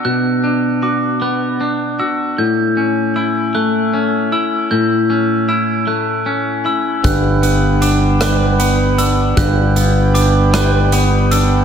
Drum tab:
HH |------|------|------|xxxxxx|
SD |------|------|------|---r--|
BD |------|------|------|o-----|

HH |xxxxxx|
SD |---r--|
BD |o-----|